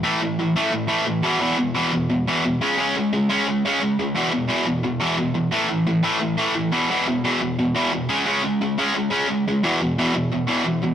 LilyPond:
\new Staff \with { instrumentName = "Distorted electric guitar" } { \clef bass \time 4/4 \key e \major \tempo 4 = 175 <a, e a>8 <a, e>8 <a, e>8 <a, e a>8 <a, e>8 <a, e a>8 <a, e>8 <e, b, e>8 | <e, b, e>8 <e, b,>8 <e, b, e>8 <e, b,>8 <e, b,>8 <e, b, e>8 <e, b,>8 <cis gis cis'>8 | <cis gis cis'>8 <cis gis>8 <cis gis>8 <cis gis cis'>8 <cis gis>8 <cis gis cis'>8 <cis gis>8 <cis gis>8 | <e, b, e>8 <e, b,>8 <e, b, e>8 <e, b,>8 <e, b,>8 <e, b, e>8 <e, b,>8 <e, b,>8 |
<a, e a>8 <a, e>8 <a, e>8 <a, e a>8 <a, e>8 <a, e a>8 <a, e>8 <e, b, e>8 | <e, b, e>8 <e, b,>8 <e, b, e>8 <e, b,>8 <e, b,>8 <e, b, e>8 <e, b,>8 <cis gis cis'>8 | <cis gis cis'>8 <cis gis>8 <cis gis>8 <cis gis cis'>8 <cis gis>8 <cis gis cis'>8 <cis gis>8 <cis gis>8 | <e, b, e>8 <e, b,>8 <e, b, e>8 <e, b,>8 <e, b,>8 <e, b, e>8 <e, b,>8 <e, b,>8 | }